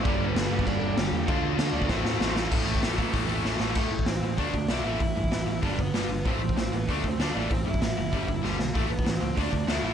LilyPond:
<<
  \new Staff \with { instrumentName = "Lead electric guitar" } { \time 4/4 \key a \minor \tempo 4 = 192 <d' d''>8. <b b'>4~ <b b'>16 <d' d''>4 <g' g''>4 | <f' f''>4. <d' d''>8 <c' c''>4. r8 | r1 | <a a'>4 <c' c''>4 <d' d''>4 <e' e''>4 |
<e' e''>2 <d' d''>8 <b b'>4. | <c' c''>4 <c' c''>8 <b b'>8 <a a'>8 <c' c''>8 <d' d''>8 <d' d''>8 | <c' c''>8 <e' e''>8 <e' e''>2 r4 | <a a'>8 <b b'>8 <c' c''>4 <d' d''>4 <e' e''>4 | }
  \new Staff \with { instrumentName = "Distorted electric guitar" } { \clef bass \time 4/4 \key a \minor <g, d g>1 | <d a d'>2 <a, e a>2 | <a, e a>8 <a, e a>8 <a, e a>8 <a, e a>8 <a, e a>8 <a, e a>8 <a, e a>8 <a, e a>8 | <a, e a>8 <a, e>8 <a, e>8 <a, e>8 <d a d'>8 <d a>8 <d a d'>8 <a, e a>8 |
<a, e>8 <a, e>8 <a, e>8 <a, e>8 <g, d g>8 <g, d>8 <g, d g>8 <g, d>8 | <a, e a>8 <a, e>8 <a, e>8 <a, e>8 <d a d'>8 <d a>8 <d a d'>8 <a, e a>8 | <a, e>8 <a, e>8 <a, e>8 <a, e>8 <g, d g>8 <g, d>8 <g, d g>8 <g, d>8 | <a, e a>8 <a, e>8 <a, e>8 <a, e>8 <d a d'>8 <d a>8 <d a d'>8 <a, e a>8 | }
  \new Staff \with { instrumentName = "Overdriven electric guitar" } { \clef bass \time 4/4 \key a \minor <g, d g>4. <g, d g>2~ <g, d g>8 | <d a d'>4. <d a d'>8 <a, e a>4. <a, e a>8 | <a, e a>8 <a, e a>8 <a, e a>8 <a, e a>8 <a, e a>8 <a, e a>8 <a, e a>8 <a, e a>8 | <a, e a>8 <a, e>8 <a, e>8 <a, e>8 <d a d'>8 <d a>8 <d a d'>8 <a, e a>8 |
<a, e>8 <a, e>8 <a, e>8 <a, e>8 <g, d g>8 <g, d>8 <g, d g>8 <g, d>8 | <a, e a>8 <a, e>8 <a, e>8 <a, e>8 <d a d'>8 <d a>8 <d a d'>8 <a, e a>8 | <a, e>8 <a, e>8 <a, e>8 <a, e>8 <g, d g>8 <g, d>8 <g, d g>8 <g, d>8 | <a, e a>8 <a, e>8 <a, e>8 <a, e>8 <d a d'>8 <d a>8 <d a d'>8 <a, e a>8 | }
  \new Staff \with { instrumentName = "Picked electric bass" } { \clef bass \time 4/4 \key a \minor g,,8 g,,8 g,,8 g,,8 g,,8 g,,8 g,,8 e,8 | d,8 d,8 d8 d,8 a,,8 a,8 a,,4 | a,,8 a,,8 a,,4 a,,8 a,,8 a,,8 a,,8 | a,,8 a,,8 a,,8 a,,8 d,8 d,8 b,,8 a,,8 |
a,,8 g,8 a,,8 a,,8 g,,8 g,,8 g,,8 g,,8 | a,,8 a,,8 a,,8 a,,8 d,8 d,8 d,8 a,,8 | a,,8 g,8 a,,8 fis,,8 g,,8 g,,8 g,,8 b,,8 | a,,8 a,,8 a,,8 cis,8 d,8 d,8 d,8 a,,8 | }
  \new DrumStaff \with { instrumentName = "Drums" } \drummode { \time 4/4 <cymc bd>4 <cymc sn>8. bd16 <cymc bd>4 <cymc sn>4 | <cymc bd>4 <cymc sn>8. bd16 <bd sn>8 sn8 sn8 sn8 | <cymc bd>8 hho16 bd16 <hho sn>8 <hho bd>8 <hho bd>8 hho8 sn8 sn8 | <cymc bd>8. bd16 <hho sn>4 <hho bd>8 bd8 <hho sn>4 |
<hho bd>8. bd16 <hho sn>4 <hho bd>8 bd8 <hho sn>4 | <hho bd>8. bd16 <hho sn>4 <hho bd>8 bd8 <hho sn>4 | <hho bd>8. bd16 <hho sn>4 <hho bd>8 bd8 sn8 sn8 | <hho bd>8. bd16 <hho sn>4 <hho bd>8 bd8 <hho sn>4 | }
>>